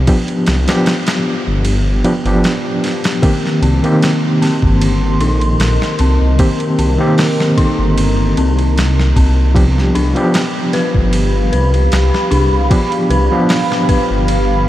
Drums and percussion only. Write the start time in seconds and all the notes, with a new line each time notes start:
0.07 kick, ride
0.28 ride
0.46 snare, ride
0.68 snare, ride
0.86 snare, ride
1.07 snare, ride
1.65 ride
2.04 ride
2.26 ride
2.44 snare, ride
2.84 snare, ride
3.04 snare, ride
3.23 kick, ride
3.46 snare
3.63 ride
3.84 ride
4.02 snare, ride
4.42 snare, ride
4.62 kick
4.81 ride
5.21 ride
5.41 ride
5.60 snare, ride
5.82 snare
5.99 ride
6.39 kick, ride
6.60 ride
6.79 ride
7.18 snare, open hi-hat
7.40 snare
7.58 kick, ride
7.98 ride
8.37 ride
8.59 ride
8.78 snare, ride
8.99 snare
9.16 kick, ride
9.56 kick, ride
9.78 snare
9.95 ride
10.16 ride
10.34 snare, ride
10.73 snare, ride
10.95 kick
11.13 ride
11.53 ride
11.74 ride
11.92 snare, ride
12.14 snare
12.32 ride
12.71 kick, ride
12.92 ride
13.11 ride
13.49 snare, open hi-hat
13.72 snare
13.89 kick, ride
14.28 ride